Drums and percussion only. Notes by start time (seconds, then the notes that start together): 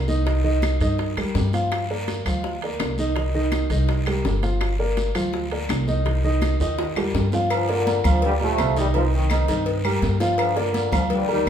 0.08 high conga, short guiro
0.26 high bongo, high timbale, long guiro
0.44 high bongo, high conga
0.62 high bongo, high conga, high timbale, short guiro, claves
0.81 high conga, high timbale, short guiro
0.98 high bongo, high conga, high timbale, long guiro
1.17 high bongo, high conga, high timbale, claves
1.35 high bongo, low bongo, high conga, low timbale, short guiro
1.53 high bongo, high conga, high timbale, short guiro
1.72 high bongo, high conga, high timbale, long guiro, claves
1.90 high conga
2.08 high bongo, high conga, high timbale, short guiro
2.26 high conga, low conga, high timbale, short guiro, claves
2.44 high bongo, high conga, long guiro
2.62 high conga, high timbale
2.80 high bongo, low bongo, high conga, high timbale, short guiro, claves
2.98 high conga, short guiro
3.16 high bongo, high timbale, long guiro
3.34 high bongo, high conga
3.52 high bongo, high conga, high timbale, short guiro, claves
3.70 high conga, high timbale, short guiro
3.88 high bongo, high conga, high timbale, long guiro
4.06 high bongo, high conga, high timbale, claves
4.25 high bongo, low bongo, high conga, low timbale, short guiro
4.43 high bongo, high conga, high timbale, short guiro
4.61 high bongo, high conga, high timbale, long guiro, claves
4.79 high conga
4.97 high bongo, high conga, high timbale, short guiro
5.15 high conga, low conga, high timbale, short guiro, claves
5.33 high bongo, high conga, long guiro
5.51 high conga, high timbale
5.69 high bongo, low bongo, high conga, high timbale, short guiro, claves
5.88 high conga, short guiro
6.05 high bongo, high timbale, long guiro
6.24 high bongo, high conga
6.42 high bongo, high conga, high timbale, short guiro, claves
6.60 high timbale, short guiro
6.78 high bongo, high conga, high timbale, long guiro
6.96 high bongo, high conga, high timbale, claves
7.14 high bongo, low bongo, high conga, low timbale, short guiro
7.32 high bongo, high conga, low timbale, short guiro
7.50 cowbell, high conga, low agogo, long guiro, claves
7.69 cowbell, high conga
7.87 cowbell, high conga, low agogo, short guiro
8.04 high conga, low conga, low agogo, short guiro, claves
8.22 cowbell, high conga, long guiro
8.40 high conga, low agogo
8.58 cowbell, high conga, low timbale, low agogo, short guiro, claves
8.77 cowbell, short guiro
8.94 cowbell, high conga, low agogo, long guiro
9.13 high conga
9.30 cowbell, high conga, low agogo, short guiro, claves
9.48 cowbell, high conga, low agogo, short guiro
9.66 cowbell, high conga, long guiro
9.84 high conga, low agogo, claves
10.02 cowbell, high conga, low timbale, short guiro
10.20 cowbell, high conga, low agogo, short guiro
10.38 cowbell, high conga, low agogo, long guiro, claves
10.56 cowbell, high conga
10.74 cowbell, high conga, low agogo, short guiro
10.92 high conga, low conga, low agogo, short guiro, claves
11.10 cowbell, high conga, low conga, long guiro
11.29 low agogo